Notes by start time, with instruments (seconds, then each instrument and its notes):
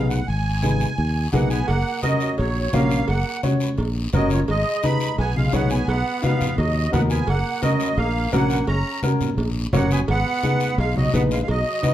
Already playing: fingered electric bass B1, upright piano B3 D#4 G#4
0.09 accordion F#5, short guiro
0.28 fingered electric bass G#1, accordion G#5, long guiro
0.63 upright piano B3 D#4 G#4, high conga, short guiro
0.80 short guiro
0.98 fingered electric bass D#2, long guiro
1.33 fingered electric bass B1, tenor saxophone A#3, upright piano B3 D#4 G#4, accordion F#5, high conga, short guiro
1.50 tenor saxophone B3, accordion G#5, short guiro
1.67 fingered electric bass F#1, tenor saxophone A#3, accordion F#5, cowbell, long guiro
2.02 tenor saxophone F#3, upright piano C#4 F#4 A#4, accordion D#5, high conga, short guiro
2.20 short guiro
2.38 fingered electric bass A#1, tenor saxophone F#3, accordion C#5, cowbell, long guiro
2.73 fingered electric bass A#1, tenor saxophone A#3, upright piano C#4 F#4 C#5, accordion F5, high conga, short guiro
2.91 short guiro
3.08 fingered electric bass F#1, tenor saxophone A#3, accordion F#5, cowbell, long guiro
3.43 upright piano C#4 F#4 C#5, high conga, short guiro
3.60 short guiro
3.78 fingered electric bass A#1, cowbell, long guiro
4.13 fingered electric bass F#1, tenor saxophone F#3, upright piano C#4 F#4 A#4, accordion D#5, high conga, low conga, low timbale, short guiro
4.30 tenor saxophone F3, accordion C#5, short guiro
4.48 fingered electric bass G#1, tenor saxophone G#3, accordion D#5, cowbell, long guiro
4.83 upright piano D#4 G#4 B4, tenor saxophone D#4, accordion B5, high conga, short guiro
5.00 short guiro
5.18 fingered electric bass B1, tenor saxophone B3, accordion G#5, cowbell, long guiro
5.36 tenor saxophone G#3, accordion F5, high conga
5.53 fingered electric bass B1, tenor saxophone B3, upright piano D#4 G#4 C#5, accordion F#5, high conga, short guiro
5.70 tenor saxophone B3, accordion G#5, short guiro
5.87 fingered electric bass B1, tenor saxophone B3, accordion F#5, cowbell, long guiro
6.22 tenor saxophone B3, upright piano D#4 F#4 B4, accordion F5, high conga, short guiro
6.41 low conga, short guiro
6.58 fingered electric bass D#2, tenor saxophone F#3, accordion D#5, cowbell, long guiro
6.92 fingered electric bass D#2, tenor saxophone B3, upright piano D#4 F#4 A#4, accordion F#5, high conga, low conga, low timbale, short guiro
7.10 tenor saxophone B3, accordion G#5, short guiro
7.27 fingered electric bass F#1, tenor saxophone A#3, accordion F#5, cowbell, long guiro
7.62 tenor saxophone F#3, upright piano C#4 F#4 A#4, accordion D#5, high conga, short guiro
7.80 short guiro
7.98 fingered electric bass A#1, tenor saxophone A#3, accordion F5, cowbell, long guiro
8.32 fingered electric bass A#1, tenor saxophone A#3, upright piano C#4 F#4 A#4, accordion F#5, high conga, low timbale, short guiro
8.50 short guiro
8.67 fingered electric bass F#1, tenor saxophone C#4, accordion A#5, cowbell, long guiro
9.02 upright piano C#4 F#4 A#4, high conga, short guiro
9.21 low conga, short guiro
9.38 fingered electric bass A#1, cowbell, long guiro
9.73 fingered electric bass F#1, tenor saxophone A#3, upright piano C#4 F#4 C#5, accordion F#5, high conga, low conga, low timbale, short guiro
9.91 tenor saxophone B3, accordion G#5, short guiro
10.08 fingered electric bass G#1, tenor saxophone B3, accordion F#5, cowbell, long guiro
10.43 upright piano D#4 G#4 B4, high conga, short guiro
10.60 short guiro
10.78 fingered electric bass B1, tenor saxophone G#3, accordion F5, cowbell, long guiro
10.96 tenor saxophone F#3, accordion D#5, high conga
11.13 fingered electric bass A#1, tenor saxophone B3, upright piano D#4 G#4 B4, accordion F#5, high conga, short guiro
11.31 tenor saxophone G#3, accordion F5, short guiro
11.42 tenor saxophone G#3, accordion F5
11.48 fingered electric bass B1, tenor saxophone F#3, accordion D#5, cowbell, long guiro
11.82 upright piano D#4 F#4 B4, high conga, short guiro